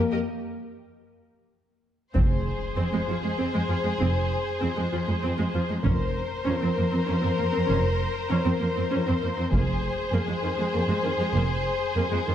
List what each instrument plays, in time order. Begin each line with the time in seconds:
Already playing: french horn section A#3
0.11 cello section F2, viola section G4 A#4, violin section A#4 D#5
2.13 double bass section F1, cello section F2, viola section C4, violin section G#4 C5, taiko, impact
2.77 cello section F2, viola section C4
2.92 cello section F2, viola section G#3
3.08 cello section F2, viola section F3
3.23 cello section F2, viola section G#3
3.38 cello section F2, viola section C4
3.54 cello section F2, viola section G#3
3.69 cello section F2, viola section F3
3.84 cello section F2, viola section G#3
4.00 double bass section F1, cello section F2, viola section C4
4.61 cello section F2, viola section C4
4.77 cello section F2, viola section G#3
4.93 cello section F2, viola section F3
5.08 cello section F2, viola section G#3
5.23 cello section F2, viola section C4
5.38 cello section F2, viola section G#3
5.54 cello section F2, viola section F3
5.69 cello section F2, viola section G#3
5.84 double bass section F1, cello section F2, viola section C#4, violin section A#4 C5, taiko
6.46 cello section F2, viola section C#4
6.62 cello section F2, viola section C4
6.77 cello section F2, viola section A#3
6.92 cello section F2, viola section C4
7.07 cello section F2, viola section C#4
7.23 cello section F2, viola section C4
7.38 cello section F2, viola section A#3
7.52 cello section F2, viola section C4
7.69 double bass section F1, cello section F2, viola section C#4
8.30 cello section F2, viola section C#4
8.45 cello section F2, viola section C4
8.60 cello section F2, viola section A#3
8.76 cello section F2, viola section C4
8.90 cello section F2, viola section C#4
9.06 cello section F2, viola section C4
9.22 cello section F2, viola section A#3
9.38 cello section F2, viola section C4
9.52 double bass section F1, cello section F2, viola section A#3, violin section G#4 C5, taiko
10.13 cello section F2, viola section A#3
10.28 cello section F2, viola section G#3
10.44 cello section F2, viola section D#3
10.58 cello section F2, viola section G#3
10.73 cello section F2, viola section A#3
10.88 cello section F2, viola section G#3
11.04 cello section F2, viola section D#3
11.19 cello section F2, viola section G#3
11.33 double bass section F1, cello section F2, viola section A#3
11.95 cello section F2, viola section A#3
12.12 cello section F2, viola section G#3
12.27 cello section F2, viola section D#3